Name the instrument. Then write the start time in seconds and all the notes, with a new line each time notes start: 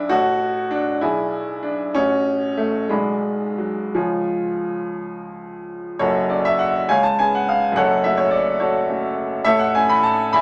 upright piano
Already playing: B1 D4 E4 A4 D5 F#5
0.09 A1 F#4 A4 C#5 F#5
0.71 D4
1.01 B1 E4 G#4 D5 G#5
1.63 D4
1.94 A1 C#4 F#4 C#5 C#6
2.57 A3
2.89 B1 G#3 F#4 D5 B5
3.58 F#3
3.95 C#2 F3 F4 C#5 G#5
5.99 F#1 F#2 F#4 A4 C#5
6.30 C#4 A4 D5
6.45 E5
6.59 F#5
6.89 C#2 C#5 F5 G#5
7.03 A5
7.19 B3 C#4 G#4 G#5
7.35 F#5
7.49 F5
7.72 F#2
7.76 F#1 A4 C#5 F#5
8.04 A3 C#4 F#4 E5
8.17 C#5
8.31 D5
8.60 F#4 A4 C#5
8.90 A3 C#4 F#4
9.45 A1 A2 A4 C#5 E5
9.59 F#5
9.75 A3 C#4 E4 G#5
9.89 B5
10.03 A5
10.33 E2 E5 G#5 B5